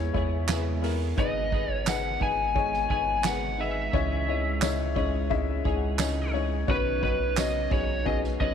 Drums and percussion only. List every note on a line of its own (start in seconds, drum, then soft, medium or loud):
0.14 kick medium
0.14 ride medium
0.32 ride soft
0.48 snare loud
0.48 clap medium
0.48 ride medium
0.48 tambourine medium
0.67 ride soft
0.84 open hi-hat medium
0.84 ride medium
1.01 ride soft
1.18 kick loud
1.18 hi-hat pedal medium
1.18 ride medium
1.52 kick medium
1.52 ride medium
1.70 ride soft
1.86 snare loud
1.86 clap medium
1.86 ride medium
1.86 tambourine medium
2.05 ride soft
2.21 kick medium
2.21 ride medium
2.39 ride soft
2.56 kick loud
2.56 ride medium
2.73 snare soft
2.73 ride soft
2.90 kick medium
2.90 ride soft
3.07 ride soft
3.24 snare loud
3.24 clap medium
3.24 tambourine medium
3.43 ride soft
3.59 ride medium
3.77 ride soft
3.93 kick loud
3.93 ride medium
4.11 ride soft
4.28 ride medium
4.45 ride soft
4.62 snare loud
4.62 clap loud
4.62 tambourine loud
4.96 kick loud
5.14 ride soft
5.31 kick loud
5.31 ride medium
5.65 kick loud
5.65 ride medium
5.82 ride soft
5.99 snare loud
5.99 clap medium
5.99 ride medium
5.99 tambourine medium
6.34 ride medium
6.51 ride soft
6.68 kick loud
6.85 ride soft
7.03 kick medium
7.03 ride medium
7.20 ride soft
7.37 snare loud
7.37 clap loud
7.37 tambourine medium
7.71 kick loud
7.71 ride medium
7.89 ride soft
8.06 kick loud
8.06 ride medium
8.24 snare soft
8.24 ride soft
8.40 kick medium
8.40 ride medium